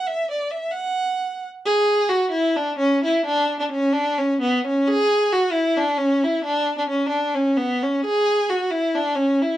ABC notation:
X:1
M:7/8
L:1/16
Q:1/4=132
K:Dlyd
V:1 name="Violin"
e2 d2 e2 f6 z2 | G4 F2 E2 D2 C2 E2 | D3 D C2 D2 C2 B,2 C2 | G4 F2 E2 D2 C2 E2 |
D3 D C2 D2 C2 B,2 C2 | G4 F2 E2 D2 C2 E2 |]